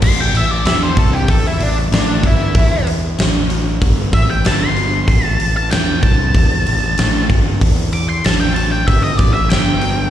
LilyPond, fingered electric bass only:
\new Staff \with { instrumentName = "Fingered electric bass" } { \clef bass \time 4/4 \key a \minor \tempo 4 = 95 a,,8 a,,8 e,8 c,8 e,8 a,,8 a,,8 g,,8 | e,4 a,,4 g,,8 a,,8 g,,4 | a,,8 a,,8 e,8 c,8 e,8 a,,8 a,,8 g,,8 | e,4 a,,4 g,,8 a,,8 g,,4 | }